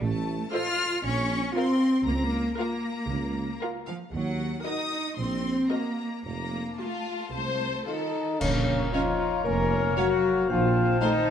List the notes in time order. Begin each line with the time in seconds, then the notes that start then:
0.01 A1 A3 A5
0.53 F4 A4 C5 D#5 F6
1.04 A#1 C#4 C#6
1.56 C4 F4 A#4 F5 C6
2.07 C#2 A#3 A#5
2.15 C4
2.21 A#3
2.58 A#3 F4 A#4 F5 A#5
3.10 C#2
3.62 F4 A#4 F5
3.87 F3 F5
4.12 D#2 F#3 F#5
4.64 D#4 F#4 A#4 D#5 D#6
5.17 A#1 C4 C6
5.70 A#3 F#4 A#4 D#5 A#5
6.25 F1 F2 A#3 A#5
6.79 A3 F4 A5
7.32 C2 C5
7.86 D#3 D#4 F4 A4 D#5
8.40 A#1 C#3 A#3 C#4 C#5 F5 A#5, concert bass drum, crash
8.93 F3 C#4 D#4 F4 C#5 F5
9.45 F1 A#3 C#4 A#4 A#5
9.97 F#3 A#3 C#4 F#4 C#5 F5 F#5
10.49 A#1 F3 C4 F4 C5 F5 A5
11.00 D#3 A3 D#4 C5 D#5 F5